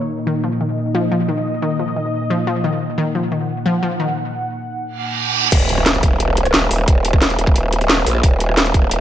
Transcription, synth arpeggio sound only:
0.27 0.39 D#3 loud
0.44 0.52 F3 medium
0.61 0.65 D#3 medium
0.95 1.02 F3 loud
1.12 1.19 F3 loud
1.28 1.33 D#3 medium
1.62 1.74 D#3 loud
1.79 1.87 F3 medium
1.96 2.01 D#3 medium
2.30 2.38 F3 loud
2.47 2.55 F3 loud
2.64 2.69 D#3 loud
2.98 3.10 D#3 loud
3.15 3.23 F3 medium
3.32 3.37 D#3 medium
3.66 3.74 F3 loud
3.83 3.91 F3 loud
4.00 4.04 D#3 medium

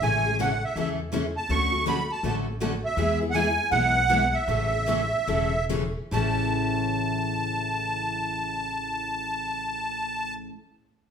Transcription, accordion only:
0.03 0.37 G#5 loud
0.41 0.64 F#5 medium
0.65 0.76 E5 medium
0.79 0.89 E5 medium
1.37 1.51 A5 medium
1.51 1.85 C#6 loud
1.88 2.11 B5 medium
2.11 2.24 A5 medium
2.26 2.36 A5 medium
2.85 3.19 E5 medium
3.31 3.35 F#5 medium
3.35 3.69 G#5 medium
3.72 4.35 F#5 loud
4.34 5.65 E5 medium
6.13 10.34 A5 medium

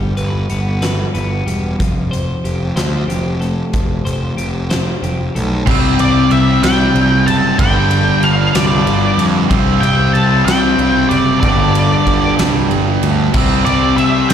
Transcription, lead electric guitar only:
6.00 6.29 D5 medium
6.32 6.63 E5 medium
6.63 7.23 G5 loud
7.27 7.59 A5 loud
7.59 8.25 G5 loud
8.23 8.55 F5 medium
8.56 9.23 D5 medium
9.81 10.13 G5 loud
10.13 10.45 A5 loud
10.45 11.12 G5 loud
11.09 11.39 D5 medium
11.40 12.33 D5 medium
13.65 13.97 D5 medium
13.97 14.31 E5 medium
14.29 14.34 G5 loud

